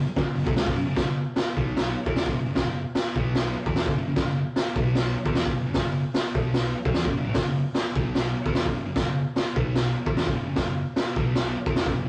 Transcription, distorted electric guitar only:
0.07 muted distorted electric guitar stroke
0.16 F#2 C#3
0.26 muted distorted electric guitar stroke
0.35 F#2 C#3
0.45 B2 F#3
0.55 C#3 G#3
0.66 F#2 C#3
0.76 F#3 C#4
0.85 F#2 C#3
0.95 F#2 C#3
1.06 F#2 C#3
1.57 B2 F#3 B3
1.97 muted distorted electric guitar stroke
2.06 E3 B3 E4
2.26 F#2 C#3
2.35 F#2 C#3
2.45 F#2 C#3
2.55 F#2 C#3
2.66 F#2 C#3
3.16 B2 F#3 B3
3.56 muted distorted electric guitar stroke
3.66 E3 B3 E4
3.86 F#2 C#3
3.98 F#2 C#3
4.08 F#2 C#3
4.17 F#2 C#3
4.27 F#2 C#3
4.76 B2 F#3 B3
5.16 muted distorted electric guitar stroke
5.25 E3 B3 E4
5.45 F#2 C#3
5.56 F#2 C#3
5.66 F#2 C#3
5.76 F#2 C#3
5.87 F#2 C#3
6.36 B2 F#3 B3
6.76 muted distorted electric guitar stroke
6.85 B2 F#3
6.96 E3 B3
7.07 F#3 C#4
7.17 F#2 C#3
7.26 A2 E3
7.35 F#2 C#3
7.46 F#2 C#3
7.96 B2 F#3 B3
8.36 muted distorted electric guitar stroke
8.46 E3 B3 E4
8.67 F#2 C#3
8.76 F#2 C#3
8.86 F#2 C#3
8.97 F#2 C#3
9.06 F#2 C#3
9.56 B2 F#3 B3
9.95 muted distorted electric guitar stroke
10.06 E3 B3 E4
10.25 F#2 C#3
10.36 F#2 C#3
10.47 F#2 C#3
10.56 F#2 C#3
10.67 F#2 C#3
11.16 B2 F#3 B3
11.56 muted distorted electric guitar stroke
11.66 E3 B3 E4
11.86 F#2 C#3
11.96 F#2 C#3
12.05 F#2 C#3

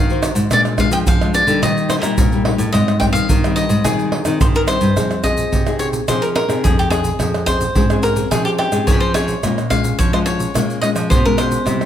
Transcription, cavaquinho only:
Already playing: F5
0.53 D5
0.80 F5
0.93 G5
1.08 F5
1.34 D5
1.63 D#5
1.90 C5
2.02 A#4
2.72 D#5
3.00 G5
3.13 F5
3.56 D#5
3.84 G#4
4.41 C5
4.56 A#4
4.68 C5
5.24 D#5
5.79 C#5
6.08 C5
6.22 A#4
6.36 A#4
6.64 G#4
6.79 G4
6.90 G#4
7.46 C5
8.03 A#4
8.31 G#4
8.45 G4
8.58 G4
8.87 C#5
9.00 C5
9.14 C#5
9.70 F5
9.99 C#5
10.13 C5
10.26 C#5
10.81 D#5
11.10 C5
11.25 A#4
11.38 C5

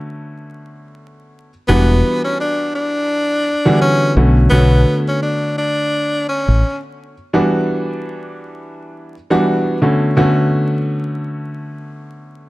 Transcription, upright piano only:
Already playing: D3 A3 B3 C#4 F#4
1.69 E3 G3 B3 D4 F#4
3.65 D3 E3 G3 B3 F#4
4.17 D3 A3 B3 C#4 F#4
4.52 D3 A3 B3 F#4 C#5
7.33 E3 G3 B3 D4 F#4
9.30 E3 G3 B3 D4 F#4
9.82 D3 A3 B3 C#4 F#4
10.17 D3 A3 B3 C#4 F#4

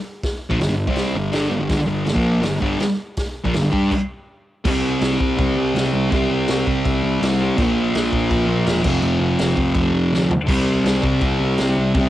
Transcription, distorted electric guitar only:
0.50 A#2 F3
0.60 G2 D3
0.69 G2 D3
0.87 C3 G3 C4
1.15 G2 D3
1.31 G2 D3 G3
1.49 G2 D3
1.60 G2 D3
1.69 G2 D3
1.78 muted distorted electric guitar stroke
1.87 G2 D3
2.05 G2 D3
2.13 A#2 F3 A#3
2.41 G2 D3
2.60 G2 D3 G3
2.80 muted distorted electric guitar stroke
3.44 A#2 F3
3.54 G2 D3
3.62 G2 D3
3.70 G3 D4 G4
4.65 C3 G3
4.70 C4
6.11 C3 G3
6.16 C4
7.58 A#2 F3
7.63 A#3
8.83 F2 C3
8.88 F3
10.47 C3 G3
10.52 C4
11.95 C3 G3
12.00 C4

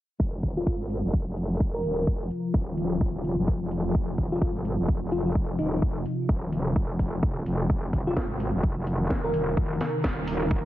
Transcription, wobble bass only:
0.20 F1
0.43 D#1
0.67 G#1
1.04 F1
1.28 F1
1.60 F1
1.84 D#1
2.07 F1
2.54 D#1
3.01 D#1
3.39 F#1
3.62 F1
3.95 F1
4.18 D#1
4.42 G#1
4.79 F1
5.03 F1
5.35 F1
5.59 D#1
5.82 F1
6.29 D#1
6.76 F1
6.99 F1
7.46 F1
7.70 F1
7.93 D#1
8.17 G#1
8.54 F1
8.78 F1
9.10 F1
9.34 D#1
9.57 F1
10.04 D#1
10.51 D#1

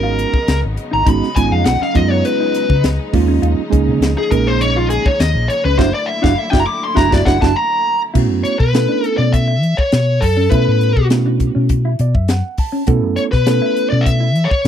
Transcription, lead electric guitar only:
Already playing: A#4
0.93 A#5
1.09 B5
1.35 G#5
1.52 F5
1.66 F#5
1.83 F5
1.95 D#5
2.11 C#5
2.25 B4
4.18 G#4
4.32 A#4
4.47 C5
4.61 C#5
4.77 F4
4.90 G#4
5.06 C#5
5.20 D#5
5.48 C#5
5.65 B4
5.79 C5
5.94 D5
6.06 E5
6.24 F5
6.38 E5
6.50 G5
6.60 A#5
6.67 D6
6.84 C6
6.97 A#5
7.13 D5
7.25 F#5
7.42 A5
7.56 A#5
8.44 C#5
8.59 B4
9.06 A4
9.18 D5
9.33 E5
9.77 C#5
10.20 A4
10.50 B4
13.16 C#5
13.32 B4
13.90 D5
14.01 E5
14.45 C#5

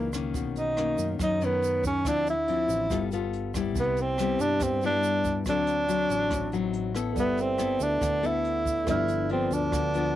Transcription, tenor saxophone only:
Already playing: A#3
0.58 D#4
1.23 D#4
1.45 B3
1.87 C#4
2.08 D4
2.30 E4
3.79 B3
4.01 C4
4.42 D4
4.63 C4
4.86 D4
5.50 D4
7.19 B3
7.41 C4
7.83 D4
8.27 E4
8.90 E4
9.32 C4
9.54 D4

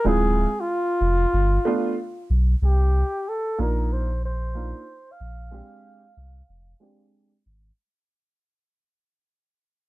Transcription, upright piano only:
0.04 G#3 C4 E4 F4
1.65 A3 B3 D4 F4
3.58 A#3 D4 D#4 F4
4.55 A#3 D4 D#4 F4
5.51 G#3 C4 D4 G4
6.80 G#3 C4 D4 G4

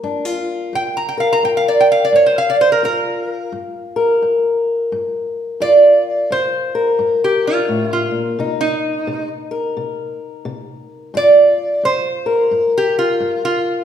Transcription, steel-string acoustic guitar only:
Already playing: G3 A#3 A#4
0.03 G2 D4
0.25 F4
0.73 G2
1.17 A#4
1.43 G2
2.12 G2
2.83 G2 F4
3.52 G2
3.96 A#4
4.22 G2
4.92 G2
5.60 G2 F4
6.30 G2
6.75 A#4
6.99 G2
7.68 A2
8.11 A#2
8.39 C3 D#4
9.07 C3
9.51 A#4
9.77 C3
10.45 C3
11.14 G2 F4
11.83 G2
12.26 A#4
12.51 G2
13.20 G2

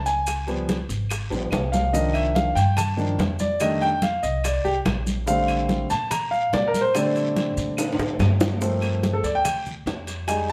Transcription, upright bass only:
Already playing: C#2
0.89 G#1
1.31 A#1
1.52 C2
2.56 G2
3.18 F2
4.23 C2
4.65 C2
4.86 A#1
5.91 A#2
6.54 A#2
7.57 A#2
7.98 A2
8.19 G2
9.23 D2
9.86 F2

